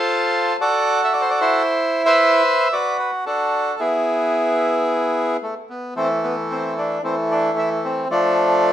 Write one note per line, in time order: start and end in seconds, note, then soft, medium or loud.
0.00 0.57 F4 medium
0.00 0.57 A4 medium
0.00 0.57 C5 medium
0.61 1.62 F#4 medium
0.61 1.63 A4 medium
0.61 1.01 D5 loud
1.04 1.13 E5 medium
1.13 1.22 D5 medium
1.21 1.30 C5 medium
1.30 1.40 D5 medium
1.41 2.42 E4 medium
1.41 2.02 C5 medium
2.05 2.68 B4 medium
2.05 2.68 C5 medium
2.05 2.74 E5 loud
2.73 3.25 F#4 medium
2.73 2.98 B4 medium
2.73 2.97 D5 medium
2.99 3.11 B4 medium
3.26 3.76 D4 medium
3.26 3.75 F#4 medium
3.26 3.81 A4 medium
3.80 5.37 B3 medium
3.80 5.37 E4 medium
3.80 5.37 G#4 medium
5.43 5.54 A3 medium
5.70 5.94 B3 medium
5.96 6.99 E3 medium
5.96 6.99 A3 medium
5.96 6.08 C4 medium
6.24 6.35 B3 medium
6.50 6.75 C4 medium
6.78 7.01 D4 medium
7.03 8.05 E3 medium
7.03 8.06 A3 medium
7.03 7.15 C4 medium
7.31 7.55 D4 medium
7.58 7.69 E4 medium
7.84 8.08 C4 medium
8.10 8.73 F3 medium
8.10 8.73 A3 medium
8.10 8.73 D4 loud